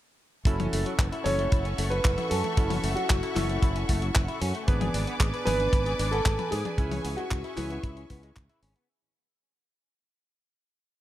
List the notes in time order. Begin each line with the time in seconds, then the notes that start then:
0.45 F#1 C#4 E4 F#4 A4 E5 F#5 C#6, kick, closed hi-hat
0.60 C#4, closed hi-hat, high tom
0.73 F#1 A3, open hi-hat
0.86 F#3, closed hi-hat
0.99 F#1 E3, kick, clap, closed hi-hat
1.12 E4, closed hi-hat
1.24 F#1 C#4 E4 F#4 A4 C#5, open hi-hat, high tom
1.39 A3, closed hi-hat
1.52 F#1 E4, kick, closed hi-hat
1.65 C#4, closed hi-hat
1.78 F#1 A3, open hi-hat
1.90 F#3 B4, closed hi-hat
2.05 F#1 E3, kick, clap, closed hi-hat
2.18 E4, closed hi-hat, high tom
2.30 F#2 C#4 A4, open hi-hat
2.44 A3, closed hi-hat, high tom
2.57 F#1 C#4 E4 F#4 A4, kick, closed hi-hat
2.70 C#4, open hi-hat, high tom
2.84 F#1 A3, open hi-hat
2.95 F#3 F#4, closed hi-hat
3.10 F#1 E3, kick, clap, closed hi-hat
3.23 E4, closed hi-hat
3.35 F#1 C#4 E4 F#4 A4, clap, open hi-hat, high tom
3.49 A3, closed hi-hat
3.62 F#1 E4, kick, closed hi-hat
3.76 C#4, closed hi-hat
3.89 F#1 A3, kick, open hi-hat
4.02 F#3, closed hi-hat
4.15 F#1 E3, kick, clap, closed hi-hat
4.28 E4, closed hi-hat
4.41 F#2 C#4, open hi-hat
4.55 A3, closed hi-hat
4.68 G#1 B3 D4 G#4 B4 D5 G#5 D6, kick, closed hi-hat
4.81 G#4, closed hi-hat, high tom
4.94 G#1 D4, open hi-hat
5.07 B3, closed hi-hat
5.20 G#1 G#3, kick, clap, closed hi-hat
5.34 B4, closed hi-hat
5.45 G#1 B3 D4 G#4 B4 G#5, open hi-hat, high tom
5.60 D4, closed hi-hat
5.73 G#1 B4, kick, closed hi-hat
5.86 G#4, closed hi-hat
5.99 G#1 D4, open hi-hat
6.11 B3 A4, closed hi-hat
6.26 G#1 G#3, kick, clap, closed hi-hat
6.39 B4, closed hi-hat, high tom
6.51 G#2 G#4, open hi-hat
6.65 D4, closed hi-hat, high tom
6.78 C#2 C#4 E4 G#4 B4 E5 C#6, kick, closed hi-hat
6.92 C#4, open hi-hat, high tom
7.05 C#2 B3, open hi-hat
7.17 G#3 F#4, closed hi-hat
7.31 C#2 E3, kick, clap, closed hi-hat
7.44 E4, closed hi-hat
7.56 C#2 C#4 E4 G#4 B4, clap, open hi-hat, high tom
7.70 B3, closed hi-hat
7.83 C#2 E4, kick, closed hi-hat
7.97 C#4, closed hi-hat
8.10 C#2 B3, kick, open hi-hat
8.23 G#3, closed hi-hat
8.36 C#2 E3, kick, clap, closed hi-hat
8.49 E4, closed hi-hat
8.63 G#1 C#4, open hi-hat
8.76 B3, closed hi-hat